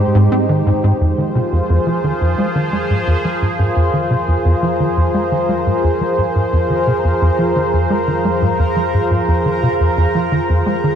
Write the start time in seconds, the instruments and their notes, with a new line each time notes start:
Already playing: synth drone G#2, analog synth pad G#3 D#4 G4 C5
0.15 analog synth bass G#2
0.32 analog synth bass C4
0.49 analog synth bass D#3
0.66 analog synth bass G#2
0.84 analog synth bass G#2
1.01 analog synth bass F2, synth drone F2, analog synth pad F3 F4 G#4 C5, synth texture A#4 A#5
1.18 analog synth bass D#3
1.35 analog synth bass C3
1.52 analog synth bass F2
1.70 analog synth bass F2
1.87 analog synth bass F3
2.04 analog synth bass D#3
2.21 analog synth bass F2
2.38 analog synth bass G#3
2.55 analog synth bass D#3
2.73 analog synth bass G#3
2.90 analog synth bass G#2
3.07 analog synth bass F2
3.25 analog synth bass F3
3.42 analog synth bass G#2
3.59 analog synth bass G#2
3.76 analog synth bass F2
3.93 analog synth bass D#3
4.10 analog synth bass C3
4.28 analog synth bass F2
4.45 analog synth bass F2
4.63 analog synth bass F3
4.80 analog synth bass D#3
4.97 analog synth bass F2
5.14 analog synth bass G#3
5.32 analog synth bass D#3
5.49 analog synth bass G#3
5.66 analog synth bass G#2
5.84 analog synth bass F2
6.01 analog synth bass F3
6.18 analog synth bass G#2
6.35 analog synth bass G#2
6.53 analog synth bass F2
6.70 analog synth bass D#3
6.87 analog synth bass C3
7.04 analog synth bass F2
7.21 analog synth bass F2
7.39 analog synth bass F3
7.56 analog synth bass D#3
7.73 analog synth bass F2
7.90 analog synth bass G#3
8.07 analog synth bass D#3
8.25 analog synth bass G#3
8.42 analog synth bass G#2
8.59 analog synth bass F2
8.76 analog synth bass F3
8.94 analog synth bass G#2
9.11 analog synth bass G#2
9.28 analog synth bass F2
9.45 analog synth bass D#3
9.63 analog synth bass C3
9.80 analog synth bass F2
9.97 analog synth bass F2
10.15 analog synth bass F3
10.32 analog synth bass D#3
10.49 analog synth bass F2
10.66 analog synth bass G#3
10.84 analog synth bass D#3